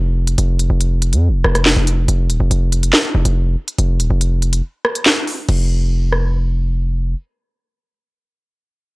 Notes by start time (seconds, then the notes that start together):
Already playing: F1
0.27 closed hi-hat
0.38 F1, closed hi-hat
0.59 closed hi-hat
0.70 F1
0.81 closed hi-hat
1.02 closed hi-hat
1.13 F2, closed hi-hat
1.28 F1
1.44 F1, cross-stick
1.55 cross-stick, closed hi-hat
1.66 snare, clap
1.76 F1
1.87 closed hi-hat
2.08 F1, closed hi-hat
2.29 D#1, closed hi-hat
2.40 F1
2.51 F1, closed hi-hat
2.72 closed hi-hat
2.83 closed hi-hat
2.93 snare, clap
3.15 F1
3.25 F1, closed hi-hat
3.68 closed hi-hat
3.78 F1, closed hi-hat
4.00 D#1, closed hi-hat
4.10 F1
4.21 closed hi-hat
4.42 closed hi-hat
4.53 closed hi-hat
4.85 cross-stick
4.95 closed hi-hat
5.06 snare, clap
5.28 open hi-hat
5.49 F1, crash
6.12 cross-stick